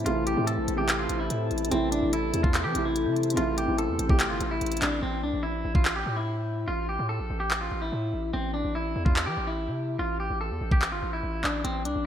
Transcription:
0.00 0.04 C3 loud
0.00 0.27 C3 medium
0.00 0.05 E3 medium
0.00 0.07 A3 loud
0.00 0.08 C4 medium
0.00 0.10 E4 loud
0.00 4.99 E4 medium
0.00 4.99 A4 medium
0.00 1.68 C5 medium
0.00 4.99 A5 medium
0.05 0.36 A1 loud
0.05 0.28 E3 medium
0.05 0.29 A3 medium
0.05 0.29 C4 medium
0.05 0.25 F4 loud
0.05 closed hi-hat medium
0.10 0.30 E4 loud
0.27 0.46 G4 medium
0.27 closed hi-hat medium
0.34 0.59 A2 loud
0.34 0.65 C3 medium
0.34 0.66 E3 medium
0.34 0.67 A3 medium
0.39 0.68 C4 medium
0.39 0.68 E4 medium
0.47 0.76 A4 medium
0.47 closed hi-hat medium
0.58 0.68 A#1 medium
0.68 1.08 A1 loud
0.68 closed hi-hat medium
0.75 1.36 C3 medium
0.75 1.37 E3 medium
0.75 1.38 A3 medium
0.75 0.97 G4 medium
0.80 1.39 C4 medium
0.80 1.39 G4 medium
0.89 clap loud
0.89 closed hi-hat medium
0.99 1.18 F4 medium
1.09 1.29 A1 loud
1.09 closed hi-hat medium
1.20 1.68 E4 medium
1.30 1.50 A2 loud
1.30 closed hi-hat medium
1.51 1.71 A1 loud
1.51 closed hi-hat soft
1.58 closed hi-hat medium
1.65 2.14 C3 loud
1.65 closed hi-hat medium
1.70 2.01 A1 loud
1.70 2.15 E3 medium
1.70 2.16 A3 medium
1.70 1.91 C4 loud
1.70 2.17 C4 medium
1.70 4.99 C5 medium
1.70 closed hi-hat medium
1.74 2.17 E4 loud
1.92 2.11 D4 medium
1.92 closed hi-hat medium
2.03 2.32 A1 loud
2.13 2.42 E4 medium
2.13 closed hi-hat medium
2.31 2.66 E2 loud
2.31 2.62 C3 medium
2.31 2.63 E3 medium
2.31 2.63 A3 medium
2.31 closed hi-hat medium
2.35 2.64 C4 medium
2.35 2.65 E4 medium
2.43 2.63 F4 medium
2.43 kick loud
2.54 clap loud
2.54 closed hi-hat medium
2.64 2.74 E3 loud
2.64 2.83 G4 medium
2.72 3.08 A1 loud
2.72 3.18 C3 medium
2.72 3.19 E3 medium
2.72 3.19 A3 medium
2.72 closed hi-hat medium
2.76 3.20 C4 medium
2.76 3.21 E4 medium
2.85 3.34 E4 medium
2.96 closed hi-hat medium
3.06 3.36 C3 loud
3.16 closed hi-hat soft
3.23 closed hi-hat medium
3.30 3.58 C3 medium
3.30 closed hi-hat medium
3.35 3.67 A1 loud
3.35 3.58 E3 medium
3.35 3.59 A3 medium
3.35 3.60 C4 medium
3.35 3.56 F4 loud
3.35 closed hi-hat medium
3.40 3.61 E4 loud
3.58 3.77 G4 medium
3.58 closed hi-hat medium
3.65 3.90 A1 loud
3.65 3.96 C3 medium
3.65 3.97 E3 medium
3.65 3.98 A3 medium
3.70 3.99 C4 medium
3.70 3.99 E4 medium
3.78 4.08 A4 medium
3.78 closed hi-hat medium
3.89 3.99 E2 loud
3.99 4.32 A1 loud
3.99 closed hi-hat medium
4.07 4.68 C3 medium
4.07 4.68 E3 medium
4.07 4.69 A3 medium
4.07 4.29 G4 medium
4.07 kick medium
4.11 4.70 C4 medium
4.11 4.71 G4 medium
4.20 clap loud
4.20 closed hi-hat medium
4.30 4.40 G1 loud
4.30 4.49 F4 medium
4.40 4.60 A1 loud
4.40 closed hi-hat medium
4.51 4.80 E4 medium
4.61 4.81 A1 loud
4.61 closed hi-hat medium
4.66 closed hi-hat medium
4.72 closed hi-hat medium
4.77 closed hi-hat medium
4.82 5.02 A1 loud
4.82 5.01 D4 medium
4.82 clap medium
4.82 closed hi-hat medium
5.02 5.25 A1 loud
5.02 5.21 C4 loud
5.23 5.33 C2 loud
5.23 5.42 D4 medium
5.34 5.63 A1 loud
5.43 5.73 E4 medium
5.65 6.04 A1 loud
5.75 5.94 F4 medium
5.75 kick medium
5.85 clap loud
5.96 6.15 G4 medium
6.06 6.66 A2 loud
6.16 6.65 E4 medium
6.68 6.98 A1 loud
6.68 6.87 F4 loud
6.89 7.08 G4 medium
6.99 7.21 A2 loud
7.09 7.38 A4 medium
7.20 7.30 A#1 medium
7.30 7.70 A1 loud
7.40 7.59 G4 medium
7.51 clap loud
7.61 7.80 F4 medium
7.71 7.91 A1 loud
7.82 8.30 E4 medium
7.92 8.12 A2 loud
8.13 8.33 A1 loud
8.34 8.63 A1 loud
8.34 8.53 C4 loud
8.54 8.73 D4 medium
8.65 8.94 A1 loud
8.75 9.04 E4 medium
8.96 9.28 E2 loud
9.05 9.25 F4 medium
9.05 kick medium
9.16 clap loud
9.26 9.37 E3 loud
9.26 9.45 G4 medium
9.37 9.70 A1 loud
9.47 9.96 E4 medium
9.68 9.98 C3 loud
9.99 10.29 A1 loud
9.99 10.18 F4 loud
10.20 10.39 G4 medium
10.30 10.52 A1 loud
10.41 10.70 A4 medium
10.51 10.61 E2 medium
10.61 10.94 A1 loud
10.71 10.91 G4 medium
10.71 kick medium
10.82 clap loud
10.92 11.02 G1 loud
10.92 11.11 F4 medium
11.03 11.22 A1 loud
11.13 11.42 E4 medium
11.23 11.43 A1 loud
11.44 11.64 A1 loud
11.44 11.63 D4 medium
11.44 clap medium
11.64 11.87 A1 loud
11.64 11.83 C4 loud
11.64 closed hi-hat medium
11.85 11.95 C2 loud
11.85 12.04 D4 medium
11.85 closed hi-hat medium
11.96 12.06 A1 loud

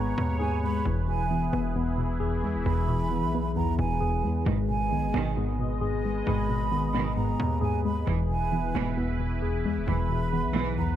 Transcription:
0.00 0.14 G#1 loud
0.00 0.39 G#2 loud
0.00 0.17 B2 medium
0.00 0.63 D#3 loud
0.00 0.82 G#3 medium
0.00 0.85 G#3 medium
0.00 0.85 B3 medium
0.00 0.38 G#4 loud
0.00 0.82 G#4 medium
0.00 8.03 B4 medium
0.00 0.84 C#5 medium
0.00 0.38 A#5 medium
0.18 0.83 D#2 loud
0.18 0.86 B2 medium
0.40 0.85 G#2 medium
0.40 0.85 G#4 loud
0.40 0.62 G#5 medium
0.63 0.86 G#3 medium
0.63 0.84 B5 medium
0.85 1.50 E1 loud
0.85 1.74 E2 medium
0.85 2.64 E3 medium
0.85 4.43 E3 medium
0.85 4.43 E4 medium
0.85 10.96 G#4 medium
1.08 1.97 B2 medium
1.08 1.72 G#5 medium
1.30 2.43 E3 medium
1.30 1.74 B3 medium
1.53 2.45 E1 loud
1.53 2.66 B3 loud
1.76 2.20 E2 loud
1.76 3.10 B3 medium
1.98 2.87 B2 medium
2.20 2.65 E2 medium
2.20 3.99 G#4 loud
2.43 2.57 E2 loud
2.43 3.56 G#3 medium
2.55 2.65 E1 loud
2.65 3.25 E1 loud
2.65 3.55 E2 loud
2.65 4.46 E3 medium
2.65 3.52 B5 loud
2.89 3.77 B2 medium
3.11 4.24 E3 medium
3.11 3.55 B3 medium
3.23 3.76 B1 loud
3.34 4.47 B3 medium
3.56 4.00 E2 loud
3.56 4.47 B3 medium
3.56 3.78 A#5 medium
3.79 4.25 E1 loud
3.79 4.46 B2 medium
3.79 4.43 G#5 loud
4.00 4.47 E2 medium
4.00 4.46 G#4 medium
4.24 4.45 E2 loud
4.24 4.46 G#3 medium
4.46 4.93 G#1 loud
4.46 4.56 B1 medium
4.46 4.56 G#2 medium
4.46 5.36 G#2 loud
4.46 4.56 D#3 medium
4.46 8.04 G#3 medium
4.46 6.25 G#3 medium
4.46 8.04 D#5 medium
4.69 5.58 B2 medium
4.69 5.33 G#5 loud
4.91 5.05 B1 loud
4.91 6.04 D#3 medium
4.91 5.36 B3 medium
5.03 5.13 G#1 loud
5.14 6.23 G#1 loud
5.14 5.47 B1 loud
5.14 5.47 G#2 loud
5.14 5.47 D#3 loud
5.14 6.27 B3 medium
5.37 5.80 G#2 medium
5.37 6.70 B3 medium
5.59 6.48 B2 medium
5.81 6.26 G#2 medium
5.81 7.60 G#4 loud
6.05 7.18 G#3 medium
6.26 7.36 G#1 loud
6.26 6.37 B1 medium
6.26 6.37 G#2 medium
6.26 7.16 G#2 medium
6.26 6.37 D#3 medium
6.26 8.07 G#3 medium
6.26 7.13 B5 loud
6.49 7.39 B2 medium
6.72 7.85 D#3 loud
6.72 7.16 B3 medium
6.94 7.27 B1 loud
6.94 7.27 G#2 loud
6.94 7.27 D#3 loud
6.94 8.07 B3 medium
7.17 7.61 G#2 medium
7.17 8.07 B3 medium
7.17 7.59 A#5 medium
7.40 8.05 D#2 loud
7.40 8.07 B2 medium
7.61 8.07 G#2 medium
7.61 8.07 G#4 loud
7.61 7.84 G#5 medium
7.85 8.07 G#3 medium
7.85 8.06 B5 medium
8.07 8.72 E1 loud
8.07 8.17 B1 medium
8.07 8.96 E2 loud
8.07 8.17 G#2 medium
8.07 9.86 E3 medium
8.07 8.17 E3 loud
8.07 10.96 E3 medium
8.07 10.96 E4 medium
8.07 9.86 B4 medium
8.29 9.18 B2 medium
8.29 8.94 G#5 medium
8.52 9.65 E3 medium
8.52 8.96 B3 medium
8.75 9.67 E1 loud
8.75 9.08 B1 loud
8.75 9.08 G#2 loud
8.75 9.08 E3 loud
8.75 9.88 B3 loud
8.97 9.41 E2 loud
8.97 10.32 B3 medium
9.20 10.09 B2 medium
9.42 9.87 E2 medium
9.42 10.96 G#4 loud
9.65 9.79 E2 loud
9.65 10.78 G#3 medium
9.77 9.87 E1 loud
9.87 10.46 E1 loud
9.87 9.98 B1 medium
9.87 10.77 E2 loud
9.87 9.98 G#2 medium
9.87 10.96 E3 medium
9.87 9.98 E3 medium
9.87 10.96 B4 medium
9.87 10.74 B5 loud
10.10 10.96 B2 medium
10.33 10.96 E3 medium
10.33 10.77 B3 medium
10.45 10.96 B1 loud
10.55 10.88 B1 loud
10.55 10.88 G#2 loud
10.55 10.88 E3 loud
10.55 10.96 B3 medium
10.78 10.96 E2 loud
10.78 10.96 B3 medium
10.78 10.96 A#5 medium

